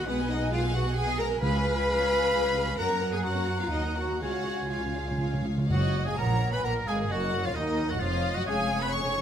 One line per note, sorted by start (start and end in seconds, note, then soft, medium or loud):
0.00 1.11 F#5 medium
0.05 1.39 B1 medium
0.05 0.18 G#3 medium
0.05 0.28 B3 medium
0.05 0.29 B3 loud
0.05 0.18 G#4 medium
0.05 0.17 B4 medium
0.05 0.29 B4 medium
0.05 0.17 F#5 medium
0.05 2.47 G#5 medium
0.19 0.30 B3 medium
0.19 0.30 F#4 medium
0.19 0.30 D#5 medium
0.19 0.30 G#5 medium
0.27 0.40 G#3 medium
0.27 0.50 D#4 medium
0.27 0.52 D#4 medium
0.27 0.41 G#4 medium
0.27 0.41 B4 medium
0.27 0.52 D#5 medium
0.27 0.41 F#5 medium
0.40 0.51 B3 medium
0.40 0.51 F#4 medium
0.40 0.53 D#5 medium
0.40 0.53 G#5 medium
0.50 0.61 G#3 medium
0.50 0.73 F4 medium
0.50 0.61 F4 loud
0.50 0.61 G#4 medium
0.50 0.63 B4 medium
0.50 0.74 F5 loud
0.50 0.63 F#5 medium
0.62 0.74 B3 medium
0.62 0.74 F#4 medium
0.62 0.74 D#5 medium
0.62 0.74 G#5 medium
0.72 0.84 G#3 medium
0.72 0.96 F#4 medium
0.72 0.84 G#4 medium
0.72 0.85 B4 medium
0.72 0.85 F#5 medium
0.72 0.97 F#5 medium
0.84 0.96 B3 medium
0.84 0.96 F#4 medium
0.84 0.97 D#5 medium
0.84 0.97 G#5 medium
0.95 1.06 G#3 medium
0.95 1.06 G#4 medium
0.95 1.19 G#4 medium
0.95 1.19 G#4 loud
0.95 1.07 B4 medium
0.95 1.07 F#5 medium
0.95 1.19 G#5 loud
1.06 1.18 B3 medium
1.06 1.18 F#4 medium
1.06 1.19 D#5 medium
1.06 1.19 G#5 medium
1.17 1.30 G#3 medium
1.17 1.29 G#4 medium
1.17 1.29 A#4 medium
1.17 1.42 A#4 loud
1.17 1.31 B4 medium
1.17 1.31 F#5 medium
1.17 1.27 A#5 medium
1.30 1.42 B3 medium
1.30 1.41 F#4 medium
1.30 1.42 D#5 medium
1.30 1.42 G#5 medium
1.41 2.75 C#2 medium
1.41 2.06 C#3 medium
1.41 1.52 F3 medium
1.41 1.52 G#4 medium
1.41 2.75 B4 loud
1.41 1.53 B4 medium
1.41 2.74 F5 medium
1.41 1.53 F5 medium
1.41 2.76 B5 loud
1.53 1.64 G#3 medium
1.53 1.64 F4 medium
1.53 1.65 C#5 medium
1.53 1.65 G#5 medium
1.64 1.76 F3 medium
1.64 1.76 G#4 medium
1.64 1.76 B4 medium
1.64 1.76 F5 medium
1.76 1.87 G#3 medium
1.76 1.87 F4 medium
1.76 1.87 C#5 medium
1.76 1.88 G#5 medium
1.87 1.98 F3 medium
1.87 1.98 G#4 medium
1.87 1.98 B4 medium
1.87 1.98 F5 medium
1.98 2.10 G#3 medium
1.98 2.10 F4 medium
1.98 2.10 C#5 medium
1.98 2.10 G#5 medium
2.09 2.22 F3 medium
2.09 2.22 G#4 medium
2.09 2.21 B4 medium
2.09 2.21 F5 medium
2.21 2.33 G#3 medium
2.21 2.33 F4 medium
2.21 2.32 C#5 medium
2.21 2.32 G#5 medium
2.32 2.43 F3 medium
2.32 2.43 G#4 medium
2.32 2.43 B4 medium
2.32 2.43 F5 medium
2.43 2.56 G#3 soft
2.43 2.56 F4 soft
2.43 2.55 C#5 medium
2.43 2.55 G#5 medium
2.54 2.67 F3 medium
2.54 2.67 G#4 medium
2.54 2.66 B4 medium
2.54 2.66 F5 medium
2.64 2.78 G#3 medium
2.64 2.78 F4 medium
2.64 2.77 C#5 medium
2.64 2.77 G#5 medium
2.77 3.72 F#2 medium
2.77 2.89 C#4 medium
2.77 2.89 F#4 medium
2.77 2.88 A#4 medium
2.77 3.12 A#4 loud
2.77 3.13 A#4 medium
2.77 2.88 F#5 medium
2.77 4.19 F#5 medium
2.77 4.18 A#5 medium
2.77 3.12 A#5 medium
2.88 3.01 A#3 medium
2.88 3.01 A#4 soft
2.88 3.00 C#5 medium
2.88 3.01 A#5 medium
3.00 3.13 C#4 medium
3.00 3.13 F#4 medium
3.00 3.12 A#4 medium
3.00 3.12 F#5 medium
3.11 3.24 A#3 medium
3.11 3.25 G#4 medium
3.11 3.18 G#4 medium
3.11 3.24 A#4 medium
3.11 3.24 C#5 medium
3.11 3.24 G#5 medium
3.11 3.24 A#5 medium
3.24 3.36 C#4 medium
3.24 3.60 F#4 medium
3.24 3.36 F#4 medium
3.24 3.60 F#4 medium
3.24 3.35 A#4 soft
3.24 3.35 F#5 medium
3.24 3.59 F#5 medium
3.36 3.48 A#3 medium
3.36 3.48 A#4 soft
3.36 3.48 C#5 medium
3.36 3.48 A#5 medium
3.47 3.59 C#4 medium
3.47 3.59 F#4 medium
3.47 3.60 A#4 medium
3.47 3.60 F#5 medium
3.59 3.72 A#3 medium
3.59 3.72 F4 medium
3.59 3.67 F4 medium
3.59 3.72 A#4 medium
3.59 3.71 C#5 medium
3.59 3.72 F5 medium
3.59 3.72 A#5 soft
3.71 4.20 D#2 medium
3.71 3.83 F#3 medium
3.71 3.96 D#4 medium
3.71 3.83 F#4 medium
3.71 3.83 A#4 medium
3.71 3.96 D#5 medium
3.71 3.83 F#5 medium
3.84 3.96 A#3 soft
3.84 3.96 D#4 soft
3.84 3.96 D#5 soft
3.84 3.96 A#5 soft
3.96 4.09 F#3 soft
3.96 4.09 F#4 soft
3.96 4.20 F#4 medium
3.96 4.21 F#4 medium
3.96 4.08 A#4 soft
3.96 4.08 F#5 soft
3.96 4.20 F#5 medium
4.08 4.21 A#3 soft
4.08 4.21 D#4 medium
4.08 4.21 D#5 soft
4.08 4.21 A#5 medium
4.20 5.49 C#2 medium
4.20 4.29 C#3 soft
4.20 4.32 F4 medium
4.20 4.70 F#4 medium
4.20 4.71 F#4 medium
4.20 4.33 G#4 medium
4.20 4.31 C#5 medium
4.20 4.31 F5 soft
4.20 4.70 F#5 medium
4.20 5.44 G#5 medium
4.30 4.37 C#3 soft
4.30 4.46 C#4 soft
4.30 4.43 F4 soft
4.30 4.43 C#5 soft
4.30 4.43 F5 soft
4.38 4.45 C#3 soft
4.44 4.53 C#3 soft
4.44 4.55 F4 soft
4.44 4.58 G#4 soft
4.44 4.56 C#5 soft
4.44 4.55 F5 medium
4.54 4.61 C#3 soft
4.54 4.70 C#4 soft
4.54 4.68 F4 soft
4.54 4.67 C#5 soft
4.54 4.67 F5 soft
4.62 4.69 C#3 soft
4.68 4.77 C#3 soft
4.68 4.81 F4 soft
4.68 5.46 F4 medium
4.68 4.82 G#4 medium
4.68 4.80 C#5 soft
4.68 4.80 F5 soft
4.68 5.45 F5 medium
4.73 5.46 F4 medium
4.78 4.85 C#3 soft
4.78 4.94 C#5 soft
4.78 4.93 F5 soft
4.82 4.93 C#3 soft
4.82 4.96 C#4 soft
4.82 4.95 F4 soft
4.94 5.02 C#3 medium
4.94 5.08 F4 soft
4.94 5.09 G#4 soft
4.94 5.06 C#5 soft
4.94 5.06 F5 soft
5.03 5.09 C#3 medium
5.07 5.17 C#3 medium
5.07 5.21 C#4 soft
5.07 5.19 F4 soft
5.07 5.19 C#5 soft
5.07 5.19 F5 medium
5.18 5.25 C#3 medium
5.18 5.33 F4 soft
5.18 5.33 G#4 soft
5.18 5.31 C#5 soft
5.18 5.31 F5 soft
5.26 5.33 C#3 medium
5.32 5.41 C#3 medium
5.32 5.46 C#4 soft
5.32 5.44 F4 soft
5.32 5.45 C#5 soft
5.32 5.45 F5 soft
5.42 5.48 C#3 medium
5.42 5.57 F4 soft
5.42 5.58 G#4 soft
5.46 5.57 C#3 medium
5.46 5.56 C#5 soft
5.46 5.56 F5 soft
5.57 5.65 C#3 medium
5.57 5.70 C#4 soft
5.57 5.71 F4 soft
5.57 5.70 C#5 medium
5.57 5.70 F5 medium
5.69 6.03 F#1 medium
5.69 6.03 F#2 medium
5.69 6.36 F#2 loud
5.69 6.04 F#3 medium
5.69 6.03 F#4 medium
5.69 6.03 C#5 medium
5.69 6.13 D#5 medium
5.69 6.03 F#5 medium
6.05 6.17 G#2 medium
6.05 6.18 G#3 medium
6.05 6.17 G#4 medium
6.05 6.18 G#4 medium
6.05 6.17 F5 medium
6.05 6.17 G#5 medium
6.15 6.52 A#1 medium
6.15 6.52 A#2 medium
6.15 6.51 A#4 medium
6.15 6.52 A#4 medium
6.15 6.63 C#5 medium
6.15 6.51 F#5 medium
6.15 6.52 A#5 medium
6.20 6.53 A#3 medium
6.51 6.63 B2 medium
6.51 6.65 B3 medium
6.51 6.63 B4 medium
6.51 6.64 B4 medium
6.51 6.66 B4 medium
6.51 6.63 G#5 medium
6.51 6.64 B5 medium
6.63 6.86 A#1 medium
6.63 6.86 A#2 medium
6.63 6.75 A#3 medium
6.63 7.54 A#4 medium
6.63 6.87 A#4 medium
6.63 6.89 A#4 medium
6.63 6.70 F#5 medium
6.63 6.72 A#5 loud
6.85 7.10 G#1 medium
6.85 7.09 G#2 medium
6.85 7.10 G#3 medium
6.85 7.13 G#4 medium
6.85 7.10 G#4 medium
6.85 7.09 F5 medium
6.85 6.96 G#5 medium
7.09 7.44 F#1 medium
7.09 7.43 F#2 medium
7.09 7.45 F#3 medium
7.09 7.44 F#4 medium
7.09 7.45 F#4 medium
7.09 7.47 F#4 medium
7.09 7.43 D#5 medium
7.09 7.43 F#5 medium
7.44 7.56 F2 medium
7.44 7.56 F3 medium
7.44 7.56 F4 medium
7.44 7.57 F4 medium
7.44 7.55 C#5 medium
7.44 7.56 F5 medium
7.55 7.89 D#2 medium
7.55 7.90 D#2 medium
7.55 7.89 D#3 medium
7.55 7.91 D#4 medium
7.55 7.89 D#4 medium
7.55 7.90 D#4 medium
7.55 7.89 A#4 medium
7.55 8.00 A#4 medium
7.55 7.90 D#5 medium
7.88 8.02 F#2 medium
7.88 8.02 F#3 medium
7.88 8.01 F#4 medium
7.88 8.02 F#4 medium
7.88 8.00 D#5 medium
7.88 8.01 F#5 medium
8.00 8.35 F1 medium
8.00 8.35 F2 medium
8.00 8.36 F3 medium
8.00 8.37 F4 medium
8.00 8.35 F4 medium
8.00 8.36 F4 medium
8.00 8.35 C#5 medium
8.00 8.48 D#5 medium
8.00 8.36 F5 medium
8.35 8.48 F#2 medium
8.35 8.42 F#3 medium
8.35 8.46 F#4 medium
8.35 8.47 F#4 medium
8.35 8.48 F#4 medium
8.35 8.47 D#5 medium
8.35 8.48 F#5 medium
8.46 9.21 F1 medium
8.46 9.21 F2 medium
8.46 8.81 G#3 medium
8.46 9.21 C#4 medium
8.46 8.84 G#4 medium
8.46 8.82 G#4 medium
8.46 9.21 G#4 medium
8.46 9.21 C#5 loud
8.46 8.82 F5 medium
8.46 8.82 G#5 loud
8.80 8.93 B3 medium
8.80 8.87 B4 medium
8.80 8.93 B4 medium
8.80 8.86 G#5 medium
8.80 8.93 B5 loud
8.91 9.21 C#4 medium
8.91 9.21 C#5 medium
8.91 9.21 G#5 medium
8.91 9.21 C#6 loud